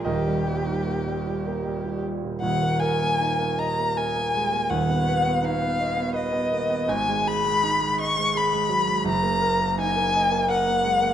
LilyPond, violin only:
\new Staff \with { instrumentName = "Violin" } { \time 3/4 \key ees \major \tempo 4 = 82 g'2~ g'8 r8 | \key ees \minor ges''8 aes''4 bes''8 aes''4 | fis''4 f''4 dis''4 | aes''8 ces'''4 des'''8 ces'''4 |
bes''4 aes''4 ges''4 | }